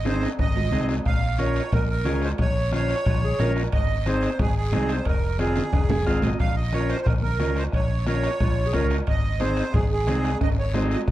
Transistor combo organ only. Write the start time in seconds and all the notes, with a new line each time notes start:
0.05 C4 D#4 G#4
0.72 C4 D#4 G#4
1.38 C#4 F4 A#4
2.05 C#4 F4 G#4
2.72 C#4 F4 C5
3.39 C#4 F4 A#4
4.07 C4 D#4 G#4
4.73 C4 D#4 G#4
5.39 C4 F4 G#4
5.91 G#5
6.06 C4 F4 G#4 F5
6.23 D#5
6.74 C#4 F4 A#4
7.39 C#4 F4 A#4
8.07 C#4 F4 A#4
8.74 C#4 F4 A#4
9.40 C4 D#4 G#4
10.07 C4 D#4 G#4
10.74 C4 D#4 G#4